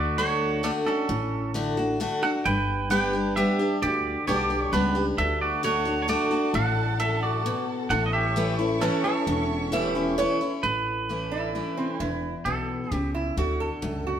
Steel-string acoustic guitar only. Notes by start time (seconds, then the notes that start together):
Already playing: D3
0.18 D3 A3 D4 F#4
0.63 D3 A3 D4 F#4
0.86 D4 F#4
1.09 A2
1.54 D3 A3 D4 F#4
1.77 D4 F#4
2.00 D3 A3 D4 F#4
2.22 D4 F#4
2.46 G2
2.90 G3 B3 D4 G4
3.13 D4 G4
3.37 G3 B3 D4 G4
3.59 D4 G4
3.83 D3
4.27 G3 B3 D4 G4
4.50 D4 G4
4.73 G3 B3 D4 G4
4.95 D4 G4
5.18 D3
5.63 D3 A3 D4 F#4
5.85 D4 F#4
6.08 D3 A3 D4 F#4
6.31 D4 F#4
6.54 A2
7.00 F#2
7.46 B2
7.91 A2
8.36 E3 A3 C#4 E4
8.59 C#4 E4
8.81 E3 A3 C#4 E4
9.04 C#4 E4
9.27 E2
9.72 E3 A3 C#4 E4
9.95 C#4 E4
10.18 E3 A3 C#4 E4
10.41 C#4 E4
10.63 A2
11.09 E3 A3 C#4 E4
11.55 E3 A3 C#4 E4
12.00 E2
12.46 B2
12.92 C#3
13.37 D3
13.82 F#2